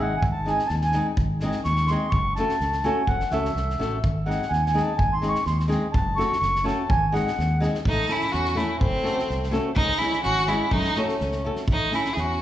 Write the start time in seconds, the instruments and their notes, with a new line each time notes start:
Already playing: nylon-string guitar G#3 C4 D#4
0.00 fingered electric bass G#1, nylon-string guitar G#4, accordion F#5
0.17 accordion G#5
0.22 fingered electric bass G#1, kick
0.32 accordion A5
0.46 nylon-string guitar G#3 C4 D#4 G#4, accordion G#5, snare
0.59 snare
0.67 fingered electric bass D#2, accordion A5, snare
0.81 accordion G#5, snare
0.92 nylon-string guitar G#3 C4 D#4, snare
0.96 nylon-string guitar G#4
1.17 fingered electric bass G#1, kick
1.40 nylon-string guitar G#3 C4 D#4, snare
1.45 nylon-string guitar G#4
1.51 snare
1.64 fingered electric bass D#2, accordion C#6, snare
1.76 snare
1.87 nylon-string guitar G#3, accordion C6, snare
1.91 nylon-string guitar C4 D#4 G#4
2.10 accordion C#6, kick
2.14 fingered electric bass F#1
2.36 nylon-string guitar A3 C#4 F#4, accordion A5, snare
2.40 nylon-string guitar A4
2.49 snare
2.60 fingered electric bass C#2, snare
2.72 snare
2.83 nylon-string guitar A3 C#4 F#4 A4, accordion G#5, snare
3.07 fingered electric bass F#1, accordion F#5, kick
3.20 snare
3.31 fingered electric bass C#2, nylon-string guitar A3 C#4 F#4 A4, accordion E5, snare
3.45 snare
3.55 fingered electric bass C2, snare
3.70 snare
3.79 fingered electric bass A1, nylon-string guitar A3 C#4 F#4 A4, snare
4.04 fingered electric bass G#1, kick
4.26 nylon-string guitar G#3 C4 D#4 G#4, accordion F#5
4.30 snare
4.42 snare
4.49 fingered electric bass D#2, accordion G#5, snare
4.66 accordion G#5, snare
4.74 nylon-string guitar G#3 C4 D#4 G#4, snare
4.82 accordion A5
4.97 fingered electric bass G#1, accordion G#5, kick
5.13 accordion C6
5.22 nylon-string guitar G#3 C4 D#4 G#4, snare
5.29 accordion C#6
5.35 snare
5.46 fingered electric bass D#2, accordion C6, snare
5.59 snare
5.68 nylon-string guitar G#3 C4 D#4 G#4, snare
5.93 fingered electric bass F#1, accordion A5, kick
6.16 nylon-string guitar A3 C#4 F#4 A4, accordion C#6, snare
6.32 snare
6.39 fingered electric bass F#1, accordion C#6, snare
6.56 snare
6.64 nylon-string guitar A3 C#4 F#4 A4, accordion A5, snare
6.90 fingered electric bass G#1, accordion G#5, kick
7.12 nylon-string guitar G#3 C4 D#4 G#4, accordion F#5, snare
7.27 snare
7.39 fingered electric bass D#2, snare
7.60 nylon-string guitar G#3 C4 D#4 G#4, snare
7.74 snare
7.85 fingered electric bass A1, accordion A3, violin D#4, kick
8.07 nylon-string guitar A3 C#4 E4 A4, accordion C#4, snare
8.12 violin E4
8.21 snare
8.32 fingered electric bass E2, accordion C#4, violin F#4, snare
8.45 snare
8.55 nylon-string guitar A3 C#4 E4 A4, accordion C#4, violin E4, snare
8.79 fingered electric bass F#1, accordion A3, violin C4, kick
9.03 nylon-string guitar A3 C#4 F#4 A4, snare
9.19 snare
9.30 fingered electric bass C2, snare
9.43 snare
9.51 nylon-string guitar A3 C#4 F#4 A4, snare
9.75 fingered electric bass C#2, accordion G#3, violin D#4, kick
9.98 nylon-string guitar G#3 C#4 E4 G#4, accordion C#4, violin E4, snare
10.12 snare
10.22 fingered electric bass G#1, accordion C#4, violin F#4, snare
10.36 snare
10.44 nylon-string guitar G#3 C#4, accordion C#4, snare
10.48 violin E4, nylon-string guitar E4 G#4
10.70 fingered electric bass F#2, accordion A3, violin D#4, kick
10.84 snare
10.93 accordion A3, nylon-string guitar A3 C#4, snare
10.97 violin C#4, nylon-string guitar F#4 A4
11.08 snare
11.20 fingered electric bass C#2, snare
11.32 snare
11.45 nylon-string guitar A3 C#4 F#4 A4
11.56 snare
11.68 fingered electric bass A1, accordion A3, kick
11.72 violin D#4
11.91 nylon-string guitar A3 C#4 E4 A4, accordion C#4, violin E4, snare
12.05 snare
12.11 accordion E4, violin G#4
12.16 fingered electric bass E2, accordion C#4, violin F#4, snare